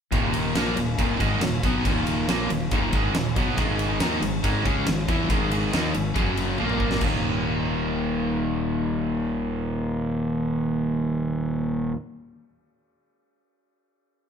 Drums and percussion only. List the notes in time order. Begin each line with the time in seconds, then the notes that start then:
0.12 kick, ride
0.34 ride
0.55 snare, ride
0.77 ride
0.99 kick, ride
1.20 kick, ride
1.41 snare, ride
1.63 kick, ride
1.85 kick, ride
2.07 ride
2.29 snare, ride
2.50 ride
2.71 kick, ride
2.93 kick, ride
3.15 snare, ride
3.36 kick, ride
3.58 kick, ride
3.79 ride
4.00 snare, ride
4.22 ride
4.44 kick, ride
4.66 kick, ride
4.87 snare, ride
5.09 kick, ride
5.30 kick, ride
5.51 ride
5.73 snare, ride
5.94 ride
6.16 kick, ride
6.37 ride
6.58 high tom
6.69 mid tom
6.80 kick
6.91 snare
7.01 kick, crash